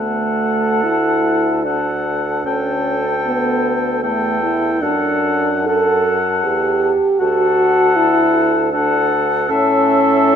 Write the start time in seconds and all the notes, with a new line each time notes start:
Already playing: D2 A3 A4 F#5 A5
0.83 E4
1.64 D4 A4 F#5 A5
2.45 D2 C#4 A4 G5 A5
3.25 B3
4.02 E2 A3 A4 G5 A5
4.42 E4
4.81 F#2 D4 A4 F#5 A5
5.66 A4 F#5 A5
6.43 E2 G4
7.19 D2 F#4 A4 F#5 A5
7.96 E4
8.72 D4 A4 F#5 A5
9.49 A2 C#4 A4 E5 A5